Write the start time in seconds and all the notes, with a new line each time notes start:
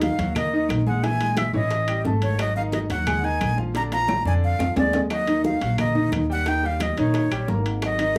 Already playing: D#2 D#3 D#4 D#5
0.02 F5, high bongo, high conga, high timbale
0.18 D#2 F#3 F#4 F#5, high bongo, high conga, high timbale
0.35 A#3 A#4 D#5 A#5, high bongo, high conga, low conga, high timbale, claves
0.53 D#3 D#4 D#5, high conga
0.69 A#1, high bongo, low bongo, high conga, high timbale, claves
0.86 G#3 G#4 F#5 G#5, high bongo, high conga
1.03 E3 E4 E5 G#5, high bongo, high conga, high timbale
1.20 G#3 G#4 G#5, high bongo, high conga, high timbale
1.37 E5, high bongo, high conga, high timbale, claves
1.53 A1 E3 E4 C#5 D#5, high bongo, high conga
1.71 high bongo, high conga, high timbale
1.88 G3 G4 G5, high conga, high timbale, claves
2.05 G#1 A3 A4 A5, high bongo, low bongo, high conga, low timbale
2.22 C#5, high bongo, high conga, high timbale
2.39 F#3 F#4 D#5 F#5, high bongo, high conga, high timbale, claves
2.56 D#3 D#4 D#5 F5, high bongo, high conga
2.72 D#5, high bongo, high conga, high timbale
2.90 D#2 F#3 F#4 F#5, high bongo, high conga, high timbale
3.06 G#3 G#4 G#5, high bongo, high conga, low conga, high timbale, claves
3.23 D#3 D#4 D#5 G#5
3.40 A#1, high bongo, low bongo, high conga, high timbale, claves
3.57 F3 F4 F5, high bongo, high conga
3.74 D3 D4 D5 A#5, high bongo, high conga, high timbale
3.92 F3 F4 F5 A#5, high bongo, high conga, high timbale
4.08 high bongo, high conga, high timbale, claves
4.25 F2 D3 D4 D5 G#5, low bongo, high conga
4.43 F5, high conga
4.59 F2 F3 F4 F5, low bongo, high conga, low timbale, claves
4.76 D#2 G#3 G#4 D5 G#5, low bongo, high conga, low timbale
4.93 low bongo, high conga, low timbale
5.10 F#3 F#4 D#5 F#5, high bongo, high conga, high timbale, claves
5.27 D#3 D#4 D#5, high bongo, high conga, high timbale
5.44 F5, high bongo, high conga
5.61 A#1 F#3 F#4 F#5, high bongo, high conga, high timbale
5.78 A#3 A#4 D#5 A#5, high bongo, high conga, low conga, high timbale, claves
5.95 D#3 D#4 D#5, high bongo, high conga, low conga
6.12 D#2, high bongo, low bongo, high conga, high timbale, claves
6.30 G3 G4 F#5 G5, high conga
6.46 D#3 D#4 D#5 G5, high bongo, high conga, high timbale
6.63 G3 G4 F5 G5, high bongo, high conga
6.80 D#5, high bongo, high conga, high timbale, claves
6.97 A#1 D#3 D#4 C#5 D#5, high bongo, high timbale
7.14 high bongo, high conga, high timbale
7.31 A#1 G3 G4 G5, high bongo, high conga, high timbale, claves
7.48 G#1 A#3 A#4 A#5, high bongo, low bongo, high conga
7.66 high timbale
7.82 F#3 F#4 D#5 F#5, high bongo, high conga, high timbale, claves
7.99 D#3 D#4 D#5, high bongo, high conga, high timbale